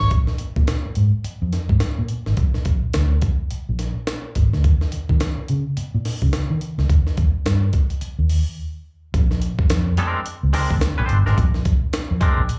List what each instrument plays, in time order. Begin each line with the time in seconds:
0.00 fingered electric bass G#1, snare
0.11 fingered electric bass A#1, kick, closed hi-hat
0.27 snare
0.38 muted fingered electric bass stroke, closed hi-hat
0.56 fingered electric bass A#2, kick
0.67 snare, closed hi-hat
0.86 muted fingered electric bass stroke
0.95 fingered electric bass G#2, closed hi-hat
1.24 muted fingered electric bass stroke, closed hi-hat
1.42 fingered electric bass F2
1.53 snare, closed hi-hat
1.69 fingered electric bass G#2, kick
1.80 snare, closed hi-hat
1.99 fingered electric bass A#2
2.08 closed hi-hat
2.26 fingered electric bass G#1, snare
2.37 fingered electric bass A#1, kick, closed hi-hat
2.54 snare
2.65 fingered electric bass A#1, kick, closed hi-hat
2.94 fingered electric bass D2, snare, closed hi-hat
3.22 kick, closed hi-hat
3.51 muted fingered electric bass stroke, closed hi-hat
3.69 fingered electric bass A#1
3.79 snare, closed hi-hat
4.07 snare, closed hi-hat
4.35 fingered electric bass G#1, kick, closed hi-hat
4.53 fingered electric bass D2, snare
4.64 fingered electric bass D#2, kick, closed hi-hat
4.81 snare
4.92 muted fingered electric bass stroke, closed hi-hat
5.09 fingered electric bass D#3, kick
5.20 snare, closed hi-hat
5.38 muted fingered electric bass stroke
5.48 fingered electric bass C#3, closed hi-hat
5.77 muted fingered electric bass stroke, closed hi-hat
5.95 fingered electric bass A#2
6.05 snare, open hi-hat
6.22 fingered electric bass C#3, kick
6.33 snare, closed hi-hat
6.50 fingered electric bass D#3
6.61 closed hi-hat
6.78 fingered electric bass C#2, snare
6.90 fingered electric bass D#2, kick, closed hi-hat
7.07 snare
7.17 fingered electric bass D#2, kick, closed hi-hat
7.46 fingered electric bass G2, snare, closed hi-hat
7.73 kick, closed hi-hat
7.90 closed hi-hat
8.01 muted fingered electric bass stroke, closed hi-hat
8.19 fingered electric bass D#2
8.29 open hi-hat
9.14 fingered electric bass A#1, kick, closed hi-hat
9.31 snare
9.42 closed hi-hat
9.59 kick
9.70 fingered electric bass F2, snare, closed hi-hat
9.97 clean electric guitar G#3 C4 D4 A#4, closed hi-hat
10.26 closed hi-hat
10.43 fingered electric bass C#2
10.53 clean electric guitar G#3 C4 D4 A#4, snare, open hi-hat
10.71 fingered electric bass D2, kick
10.81 snare, closed hi-hat
10.98 fingered electric bass A#1, clean electric guitar G#3 C4 D4 C5
11.09 fingered electric bass G1, closed hi-hat
11.26 fingered electric bass G#1, clean electric guitar G#3 C4 D4 A#4, snare
11.38 fingered electric bass A#1, kick, closed hi-hat
11.54 snare
11.65 kick, closed hi-hat
11.93 snare, closed hi-hat
12.11 fingered electric bass F2
12.21 clean electric guitar G#3 C4 D4 A#4, kick, closed hi-hat
12.38 fingered electric bass A#1
12.49 closed hi-hat